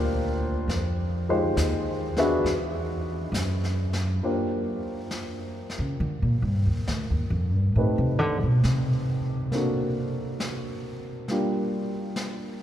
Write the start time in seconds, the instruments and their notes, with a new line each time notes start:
Already playing: upright bass D2, grand piano A#3 D4 F4 G4 A#4 C5
0.68 upright bass F2, brush sweep, snare
1.29 grand piano G#3 D#4 F4 G4 C5
1.57 upright bass D#2, snare, hi-hat pedal
2.17 grand piano B3 D4 F#4 G#4 E5, snare
2.44 upright bass E2, brush sweep, snare
3.32 upright bass F#2, snare, hi-hat pedal
3.64 snare
3.93 snare
4.22 grand piano A#3 D4 F4 G4 C5, brush sweep
5.11 snare
5.70 snare
5.79 upright bass C#3
5.99 upright bass D3, brush sweep
6.22 upright bass A#2
6.42 upright bass G2
6.66 upright bass D#2
6.87 upright bass D2, snare
7.10 upright bass D#2
7.30 upright bass F2
7.54 upright bass G2
7.76 upright bass A2, grand piano A3 C4 D#4 G4 B4, brush sweep
7.98 upright bass C3
8.19 upright bass D3
8.43 upright bass B2
8.64 upright bass C3, snare
9.52 grand piano A#3 C4 D4 F#4, brush sweep, snare
9.56 grand piano A4
10.40 snare
11.28 grand piano G3 A#3 D4 F4 G4, brush sweep, snare
12.16 snare